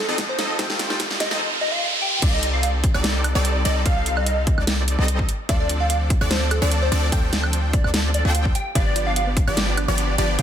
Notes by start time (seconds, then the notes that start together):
Already playing: D#3 G3 A3 C4 F4 A4, riser
0.09 F3 C4 D#4 A4 D#5
0.18 kick, snare, closed hi-hat
0.29 C5
0.39 F3 C4 D#4 A4 D#5, snare, closed hi-hat
0.58 D#3 G3 A3 C4 F4 A4 G5, kick, snare, closed hi-hat
0.70 snare
0.79 snare, closed hi-hat
0.88 D#3 G3 A3 C4 F4, snare
1.00 kick, snare, closed hi-hat
1.11 snare
1.20 D#5, snare, closed hi-hat
1.31 F3 C4 D#4 A4 D#5, snare
1.61 D#5
1.72 F5
2.02 G5
2.22 C2 G3 C4 D#4 A4 D5 F5, kick, closed hi-hat, crash
2.33 D#5
2.43 closed hi-hat
2.53 F5
2.63 F5, closed hi-hat
2.84 kick, closed hi-hat
2.94 C2 G3 C4 D#4 A4 D5, high woodblock
3.04 snare, closed hi-hat
3.24 closed hi-hat, high woodblock
3.35 C2 G3 C4 D#4 A4 D5
3.45 closed hi-hat
3.65 C2 G3 C4 D#4 A4 D5 D#5, closed hi-hat
3.86 C2 G3 C4 D#4 A4 F5, kick, closed hi-hat
3.97 F5
4.06 F5, closed hi-hat
4.17 D#5, high woodblock
4.26 closed hi-hat
4.47 kick, closed hi-hat
4.58 C2 G3 C4 D#4 A4 D5, high woodblock
4.67 snare, closed hi-hat
4.88 closed hi-hat
4.99 C2 G3 C4 D#4 A4 D#5
5.08 closed hi-hat
5.19 kick
5.29 closed hi-hat
5.49 D2 F3 C4 D4 A4 D5 F5, kick, closed hi-hat
5.60 D5
5.69 closed hi-hat
5.80 F5
5.90 F5, closed hi-hat
6.10 kick, closed hi-hat
6.21 D2 F3 C4 D4 A4 D5, high woodblock
6.30 C5, snare, closed hi-hat
6.51 A4, closed hi-hat, high woodblock
6.62 D2 F3 C4 D4 A4 D5
6.72 closed hi-hat
6.82 C5
6.92 D2 F3 C4 D4 A4 D5, closed hi-hat
7.12 D2 F3 C4 D4 A4 G5, kick, closed hi-hat
7.33 snare, closed hi-hat
7.44 high woodblock
7.53 closed hi-hat
7.73 D5, kick, closed hi-hat
7.84 D2 F3 C4 D4 A4 D5, high woodblock
7.94 snare, closed hi-hat
8.14 D5, closed hi-hat
8.25 D2 F3 C4 D4 A4 F5 G5
8.35 closed hi-hat
8.45 kick
8.55 G5, closed hi-hat
8.75 G1 F3 B3 D4 G4 D5 F5, kick, closed hi-hat
8.86 D5
8.96 F4, closed hi-hat
9.07 D4 F5
9.16 F5, closed hi-hat
9.27 B3
9.37 kick, closed hi-hat
9.47 G1 F3 B3 D4 G4 D5, high woodblock
9.57 snare, closed hi-hat
9.68 F4
9.77 D4, closed hi-hat, high woodblock
9.88 G1 F3 B3 D4 G4 D5
9.98 B3, closed hi-hat
10.18 G1 F3 B3 D4 G4 D5, closed hi-hat
10.39 G1 F3 B3 D4 G4 F5 G5, kick, closed hi-hat